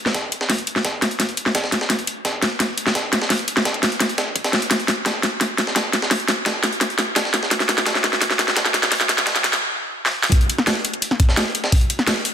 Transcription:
0.06 snare soft
0.14 kick medium
0.14 snare loud
0.14 closed hi-hat medium
0.32 closed hi-hat medium
0.41 snare medium
0.50 kick medium
0.50 snare medium
0.50 closed hi-hat medium
0.50 open hi-hat medium
0.58 closed hi-hat soft
0.67 closed hi-hat medium
0.76 snare soft
0.85 kick medium
0.85 snare loud
0.85 closed hi-hat medium
1.02 snare medium
1.02 closed hi-hat medium
1.11 closed hi-hat soft
1.20 kick medium
1.20 snare medium
1.20 closed hi-hat medium
1.29 closed hi-hat soft
1.37 closed hi-hat medium
1.46 snare soft
1.55 kick medium
1.55 snare loud
1.55 closed hi-hat medium
1.64 snare soft
1.72 snare medium
1.72 closed hi-hat medium
1.81 snare soft
1.90 kick medium
1.90 snare medium
1.90 closed hi-hat medium
1.99 closed hi-hat soft
2.07 closed hi-hat medium
2.25 kick medium
2.25 snare loud
2.25 closed hi-hat medium
2.42 snare medium
2.42 closed hi-hat medium
2.60 kick medium
2.60 snare medium
2.60 closed hi-hat medium
2.77 closed hi-hat medium
2.86 snare soft
2.86 snare medium
2.95 kick medium
2.95 snare loud
2.95 closed hi-hat medium
3.13 snare medium
3.13 closed hi-hat medium
3.22 snare medium
3.30 kick loud
3.30 snare medium
3.30 closed hi-hat medium
3.30 open hi-hat medium
3.39 closed hi-hat soft
3.48 closed hi-hat medium
3.57 snare medium
3.57 closed hi-hat soft
3.65 kick medium
3.65 snare loud
3.65 closed hi-hat medium
3.74 closed hi-hat soft
3.83 snare medium
3.83 closed hi-hat medium
3.92 closed hi-hat soft
4.00 kick loud
4.00 snare medium
4.00 closed hi-hat medium
4.09 closed hi-hat soft
4.18 snare loud
4.18 closed hi-hat medium
4.36 kick medium
4.36 closed hi-hat medium
4.44 snare loud
4.44 closed hi-hat medium
4.53 snare medium
4.53 snare soft
4.53 closed hi-hat medium
4.62 closed hi-hat soft
4.62 closed hi-hat medium
4.71 kick loud
4.71 snare medium
4.71 closed hi-hat medium
4.80 closed hi-hat soft
4.88 snare medium
4.88 closed hi-hat medium
5.06 kick medium
5.06 snare loud
5.06 snare medium
5.06 closed hi-hat medium
5.23 snare medium
5.23 closed hi-hat medium
5.41 kick loud
5.41 snare medium
5.41 closed hi-hat medium
5.58 snare medium
5.58 closed hi-hat medium
5.67 snare soft
5.76 kick medium
5.76 snare loud
5.76 snare medium
5.76 closed hi-hat medium
5.93 snare medium
5.93 closed hi-hat medium
6.02 snare medium
6.11 kick medium
6.11 snare medium
6.11 closed hi-hat medium
6.11 open hi-hat medium
6.20 closed hi-hat soft
6.28 snare medium
6.28 closed hi-hat medium
6.46 kick medium
6.46 snare loud
6.46 snare medium
6.46 closed hi-hat medium
6.64 snare medium
6.64 closed hi-hat medium
6.73 closed hi-hat soft
6.81 kick loud
6.81 snare medium
6.81 closed hi-hat medium
6.90 closed hi-hat soft
6.99 snare medium
6.99 closed hi-hat medium
7.16 kick medium
7.16 snare medium
7.16 snare loud
7.16 closed hi-hat medium
7.25 snare soft
7.34 snare medium
7.34 closed hi-hat medium
7.43 snare soft
7.51 kick medium
7.51 snare medium
7.51 closed hi-hat medium
7.60 snare medium
7.60 closed hi-hat soft
7.69 snare medium
7.69 closed hi-hat medium
7.78 snare medium
7.86 kick medium
7.86 snare loud
7.86 snare medium
7.86 closed hi-hat medium
7.86 closed hi-hat loud
7.95 snare medium
8.04 snare medium
8.04 closed hi-hat medium
8.13 snare medium
8.22 kick loud
8.22 snare medium
8.22 closed hi-hat loud
8.22 closed hi-hat medium
8.31 snare medium
8.39 snare loud
8.39 closed hi-hat medium
8.48 snare soft
8.48 snare medium
8.56 kick loud
8.56 snare loud
8.56 closed hi-hat medium
8.66 snare medium
8.74 snare loud
8.74 closed hi-hat medium
8.83 snare medium
8.92 kick loud
8.92 snare loud
8.92 closed hi-hat loud
8.92 open hi-hat medium
9.01 snare medium
9.01 closed hi-hat soft
9.09 snare loud
9.09 closed hi-hat medium
9.18 snare medium
9.18 closed hi-hat soft
9.27 kick loud
9.27 snare loud
9.27 closed hi-hat medium
9.27 closed hi-hat loud
9.36 snare medium
9.36 closed hi-hat soft
9.44 snare loud
9.44 closed hi-hat medium
9.53 snare medium
9.53 closed hi-hat soft
10.06 snare medium
10.23 snare loud
10.32 kick loud
10.32 closed hi-hat medium
10.32 closed hi-hat loud
10.41 closed hi-hat soft
10.49 closed hi-hat medium
10.58 snare medium
10.67 snare loud
10.67 closed hi-hat loud
10.67 closed hi-hat medium
10.85 closed hi-hat medium
10.94 closed hi-hat soft
11.02 closed hi-hat medium
11.11 snare soft
11.20 kick loud
11.20 closed hi-hat medium
11.29 snare soft
11.37 snare loud
11.37 closed hi-hat medium
11.55 closed hi-hat medium
11.64 snare medium
11.72 kick loud
11.72 closed hi-hat medium
11.72 open hi-hat medium
11.81 closed hi-hat soft
11.90 closed hi-hat medium
11.99 snare soft
12.07 snare loud
12.07 closed hi-hat loud
12.07 closed hi-hat medium
12.25 closed hi-hat medium
12.25 open hi-hat medium

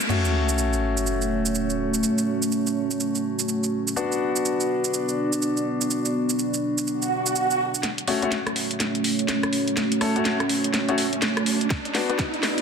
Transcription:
0.01 shaker medium
0.09 3.92 A3 medium
0.09 3.94 A3 medium
0.09 3.92 C#4 medium
0.09 3.94 C#4 medium
0.09 7.79 F#4 medium
0.09 3.94 F#4 medium
0.09 3.92 C#5 medium
0.09 crash medium
0.09 sub drop medium
0.09 shaker medium
0.25 shaker soft
0.49 shaker medium
0.58 shaker medium
0.73 shaker soft
0.97 shaker medium
1.07 shaker soft
1.22 shaker soft
1.46 shaker medium
1.55 shaker soft
1.70 shaker soft
1.94 shaker medium
2.03 shaker soft
2.18 shaker soft
2.42 shaker medium
2.52 shaker soft
2.67 shaker soft
2.91 shaker medium
3.00 shaker soft
3.15 shaker soft
3.39 shaker medium
3.49 shaker soft
3.63 shaker soft
3.88 shaker medium
3.96 7.81 B3 medium
3.96 7.79 B3 medium
3.96 7.81 D4 medium
3.96 7.79 D4 medium
3.96 7.81 F#4 medium
3.96 7.79 D5 medium
3.96 shaker soft
4.12 shaker soft
4.36 shaker medium
4.45 shaker soft
4.60 shaker soft
4.84 shaker medium
4.94 shaker soft
5.09 shaker soft
5.33 shaker medium
5.42 shaker soft
5.57 shaker soft
5.81 shaker medium
5.91 shaker medium
6.05 shaker soft
6.30 shaker medium
6.39 shaker medium
6.54 shaker soft
6.78 shaker medium
6.87 swell medium
6.87 shaker soft
7.02 shaker soft
7.26 shaker medium
7.36 shaker medium
7.51 shaker soft
7.75 shaker medium
7.83 11.67 A3 medium
7.83 11.67 C#4 medium
7.83 11.67 F#4 medium
7.83 11.67 C#5 medium
7.83 snare soft
7.83 closed hi-hat medium
7.83 riser medium
7.98 closed hi-hat medium
8.08 8.20 A3 medium
8.08 8.20 C#4 medium
8.08 8.20 F#4 medium
8.08 open hi-hat loud
8.22 8.32 A3 medium
8.22 8.32 C#4 medium
8.22 8.32 F#4 medium
8.22 closed hi-hat soft
8.32 snare soft
8.32 closed hi-hat medium
8.47 cross-stick medium
8.47 closed hi-hat soft
8.56 open hi-hat loud
8.71 closed hi-hat medium
8.80 snare soft
8.80 closed hi-hat medium
8.95 closed hi-hat soft
9.04 open hi-hat loud
9.19 closed hi-hat soft
9.28 snare medium
9.28 closed hi-hat medium
9.43 cross-stick medium
9.43 closed hi-hat soft
9.53 open hi-hat loud
9.68 closed hi-hat soft
9.77 snare medium
9.77 closed hi-hat medium
9.92 closed hi-hat soft
10.01 10.14 A3 medium
10.01 10.14 C#4 medium
10.01 10.14 A4 medium
10.01 cross-stick medium
10.01 open hi-hat loud
10.16 10.34 A3 medium
10.16 10.34 C#4 medium
10.16 10.34 F#4 medium
10.16 closed hi-hat soft
10.25 snare medium
10.25 closed hi-hat medium
10.40 cross-stick medium
10.40 closed hi-hat soft
10.49 open hi-hat loud
10.64 closed hi-hat medium
10.74 snare medium
10.74 closed hi-hat medium
10.89 10.98 A3 medium
10.89 10.98 C#4 medium
10.89 10.98 F#4 medium
10.89 closed hi-hat soft
10.98 open hi-hat loud
11.13 closed hi-hat soft
11.22 snare medium
11.22 closed hi-hat medium
11.37 cross-stick medium
11.37 closed hi-hat soft
11.46 open hi-hat loud
11.61 closed hi-hat soft
11.70 12.62 B3 medium
11.70 12.62 D4 medium
11.70 12.62 F#4 medium
11.70 12.62 D5 medium
11.70 kick loud
11.70 snare medium
11.70 closed hi-hat medium
11.85 closed hi-hat soft
11.95 12.07 B3 medium
11.95 12.07 D4 medium
11.95 12.07 F#4 medium
11.95 snare medium
11.95 open hi-hat loud
12.09 12.19 B3 medium
12.09 12.19 D4 medium
12.09 12.19 F#4 medium
12.09 closed hi-hat soft
12.19 kick loud
12.19 snare medium
12.19 closed hi-hat medium
12.34 closed hi-hat soft
12.43 snare medium
12.43 open hi-hat loud
12.58 closed hi-hat soft

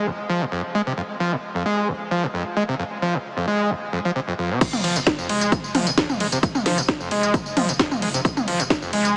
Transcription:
0.07 0.11 F1 loud
0.29 0.43 F3 medium
0.41 0.45 G#2 loud
0.52 0.62 F2 medium
0.75 0.81 G#3 loud
0.87 0.93 C3 loud
0.98 1.02 F2 loud
1.20 1.34 F3 loud
1.32 1.36 G#2 loud
1.55 1.64 F2 medium
1.66 1.90 G#3 loud
1.88 1.92 F1 loud
2.11 2.25 F3 medium
2.23 2.27 G#2 loud
2.34 2.44 F2 medium
2.57 2.63 G#3 loud
2.69 2.75 C3 loud
2.79 2.83 F2 loud
3.02 3.16 F3 loud
3.14 3.18 G#2 loud
3.37 3.46 F2 medium
3.48 3.72 G#3 loud
3.70 3.74 F1 loud
3.93 4.00 F2 medium
4.05 4.11 F3 medium
4.16 4.20 C3 loud
4.28 4.34 F2 medium
4.39 4.52 F2 medium
4.50 4.59 C3 loud
4.61 4.65 F2 loud
4.61 kick loud
4.61 closed hi-hat medium
4.61 crash loud
4.61 ride medium
4.61 tambourine soft
4.73 mid tom medium
4.73 tambourine soft
4.84 4.96 F1 loud
4.84 4.97 F3 loud
4.84 open hi-hat loud
4.84 ride medium
4.96 5.07 F1 medium
4.96 5.00 G#2 loud
4.96 closed hi-hat medium
4.96 tambourine medium
5.07 kick loud
5.07 snare loud
5.07 closed hi-hat medium
5.07 tambourine medium
5.19 5.29 F1 medium
5.19 5.28 F2 medium
5.19 tambourine soft
5.29 5.41 F1 loud
5.29 5.54 G#3 loud
5.29 open hi-hat loud
5.29 ride medium
5.41 5.52 F1 medium
5.41 closed hi-hat medium
5.41 tambourine medium
5.52 5.56 F1 loud
5.52 kick loud
5.52 closed hi-hat medium
5.52 ride medium
5.52 tambourine medium
5.64 tambourine soft
5.75 5.86 F1 loud
5.75 5.88 F3 medium
5.75 mid tom medium
5.75 open hi-hat loud
5.75 ride medium
5.87 5.97 F1 medium
5.87 5.90 G#2 loud
5.87 closed hi-hat medium
5.87 tambourine medium
5.98 6.08 F2 medium
5.98 kick loud
5.98 snare loud
5.98 closed hi-hat medium
5.98 ride medium
5.98 tambourine soft
6.09 6.20 F1 medium
6.09 mid tom medium
6.09 tambourine soft
6.20 6.32 F1 medium
6.20 6.27 G#3 loud
6.20 open hi-hat loud
6.20 ride medium
6.32 6.43 F1 medium
6.32 6.38 C3 loud
6.32 closed hi-hat medium
6.32 tambourine medium
6.43 6.47 F2 loud
6.43 kick loud
6.43 closed hi-hat medium
6.43 ride medium
6.43 tambourine medium
6.55 mid tom medium
6.55 tambourine soft
6.66 6.77 F1 loud
6.66 6.79 F3 loud
6.66 snare soft
6.66 open hi-hat loud
6.66 ride medium
6.78 6.88 F1 medium
6.78 6.81 G#2 loud
6.78 closed hi-hat medium
6.78 tambourine medium
6.89 kick loud
6.89 snare loud
6.89 closed hi-hat medium
6.89 ride medium
7.00 7.10 F1 medium
7.00 7.09 F2 medium
7.00 tambourine soft
7.11 7.23 F1 loud
7.11 7.36 G#3 loud
7.11 open hi-hat loud
7.11 ride medium
7.23 7.34 F1 medium
7.23 closed hi-hat medium
7.23 tambourine medium
7.34 7.38 F1 loud
7.34 kick loud
7.34 closed hi-hat medium
7.34 ride medium
7.34 tambourine soft
7.46 tambourine soft
7.57 7.68 F1 loud
7.57 7.70 F3 medium
7.57 mid tom medium
7.57 open hi-hat loud
7.57 ride medium
7.69 7.79 F1 medium
7.69 7.72 G#2 loud
7.69 closed hi-hat medium
7.69 tambourine medium
7.79 7.89 F2 medium
7.79 kick loud
7.79 snare loud
7.79 closed hi-hat medium
7.79 ride medium
7.79 tambourine medium
7.91 8.02 F1 medium
7.91 mid tom medium
7.91 tambourine soft
8.02 8.14 F1 loud
8.02 8.09 G#3 loud
8.02 open hi-hat loud
8.02 ride medium
8.14 8.25 F1 medium
8.14 8.20 C3 loud
8.14 closed hi-hat medium
8.14 tambourine medium
8.25 8.29 F2 medium
8.25 kick loud
8.25 closed hi-hat medium
8.25 ride medium
8.25 tambourine medium
8.37 mid tom medium
8.37 tambourine soft
8.48 8.59 F1 loud
8.48 8.61 F3 loud
8.48 open hi-hat loud
8.48 ride medium
8.60 8.70 F1 medium
8.60 8.63 G#2 loud
8.60 closed hi-hat medium
8.60 tambourine medium
8.70 kick loud
8.70 snare loud
8.70 closed hi-hat medium
8.70 ride medium
8.70 tambourine medium
8.82 8.93 F1 medium
8.82 8.91 F2 medium
8.82 tambourine soft
8.93 9.05 F1 loud
8.93 9.17 G#3 loud
8.93 open hi-hat loud
8.93 ride medium
9.05 9.16 F1 medium
9.05 closed hi-hat medium
9.05 tambourine medium

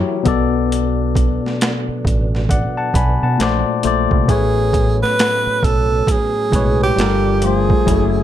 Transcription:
0.00 0.21 E3 medium
0.00 0.21 F#3 medium
0.00 0.21 E4 medium
0.00 0.22 E4 medium
0.00 0.22 G4 medium
0.00 0.23 G4 medium
0.00 0.22 A#4 medium
0.00 0.23 C#5 loud
0.23 1.37 B1 loud
0.23 1.96 B2 medium
0.23 6.94 F#3 medium
0.23 1.97 B3 medium
0.23 3.36 B3 medium
0.23 4.25 D4 medium
0.23 1.98 A4 medium
0.23 kick loud
0.23 closed hi-hat medium
0.28 1.98 D5 medium
0.72 closed hi-hat medium
1.15 kick medium
1.15 closed hi-hat medium
1.46 snare soft
1.61 finger snap medium
1.61 snare loud
1.61 closed hi-hat medium
1.89 muted fingered electric bass stroke soft
2.05 2.65 A1 medium
2.05 kick medium
2.05 closed hi-hat medium
2.35 snare soft
2.49 2.76 D5 medium
2.49 2.76 F#5 medium
2.49 kick medium
2.49 closed hi-hat medium
2.77 2.94 F#5 medium
2.77 2.94 A5 medium
2.94 3.17 B1 medium
2.94 3.22 G#5 medium
2.94 3.21 B5 medium
2.94 kick loud
2.94 closed hi-hat medium
3.23 3.37 B2 medium
3.23 3.65 F#5 soft
3.23 3.65 A5 medium
3.37 3.62 A#1 loud
3.37 3.81 A#2 medium
3.37 4.28 A#2 medium
3.37 3.82 A3 medium
3.37 3.83 C5 medium
3.37 snare medium
3.37 closed hi-hat medium
3.42 3.84 D5 loud
3.42 finger snap medium
3.82 4.07 A#1 medium
3.82 4.26 A#2 medium
3.82 4.27 A3 medium
3.82 4.28 C5 medium
3.82 closed hi-hat medium
3.87 4.28 D5 medium
4.11 4.29 C2 medium
4.11 kick medium
4.27 5.03 A1 medium
4.27 5.99 A2 medium
4.27 6.00 A3 medium
4.27 6.94 B3 medium
4.27 6.95 C#4 medium
4.27 4.98 G#4 loud
4.27 6.01 B4 medium
4.27 kick medium
4.27 closed hi-hat medium
4.32 6.02 C#5 medium
4.73 kick medium
4.73 closed hi-hat medium
5.03 5.66 B4 loud
5.03 snare soft
5.19 finger snap medium
5.19 snare loud
5.19 closed hi-hat medium
5.47 muted fingered electric bass stroke soft
5.63 6.00 B1 medium
5.63 6.13 A4 loud
5.63 kick medium
5.63 closed hi-hat medium
6.07 kick medium
6.07 closed hi-hat medium
6.11 6.82 G#4 loud
6.51 6.90 B1 medium
6.51 6.97 A2 medium
6.51 6.98 G#3 medium
6.51 6.98 B4 medium
6.51 kick loud
6.51 closed hi-hat medium
6.56 6.99 C#5 medium
6.83 7.47 G4 loud
6.96 7.71 G1 medium
6.96 7.85 F3 medium
6.96 7.40 G3 medium
6.96 7.85 F4 medium
6.96 7.40 F4 medium
6.96 7.41 A4 medium
6.96 7.86 D5 medium
6.96 snare medium
6.96 closed hi-hat medium
7.01 7.42 A#4 medium
7.01 finger snap medium
7.42 7.85 F3 medium
7.42 7.87 A3 medium
7.42 7.86 F4 medium
7.42 8.23 G#4 loud
7.42 closed hi-hat medium
7.47 7.87 C5 medium
7.70 kick loud
7.85 8.23 F#1 loud
7.85 8.23 F#3 medium
7.85 8.23 E4 medium
7.85 8.23 F#4 medium
7.85 8.23 G#5 medium
7.85 kick loud
7.85 closed hi-hat medium
7.89 8.23 A3 medium
7.89 8.23 G#4 medium

